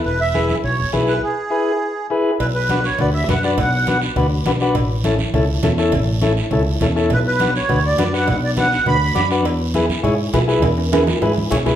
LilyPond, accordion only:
\new Staff \with { instrumentName = "Accordion" } { \time 4/4 \key b \dorian \tempo 4 = 204 b'8 e''4 e''8 cis''4 r8 b'8 | gis'2. r4 | b'8 b'4 cis''8 d''8 e''8 fis''8 d''8 | fis''4. r2 r8 |
r1 | r1 | b'8 b'4 cis''4 d''4 fis''8 | fis''8 d''8 fis''4 b''4. r8 |
r1 | r1 | }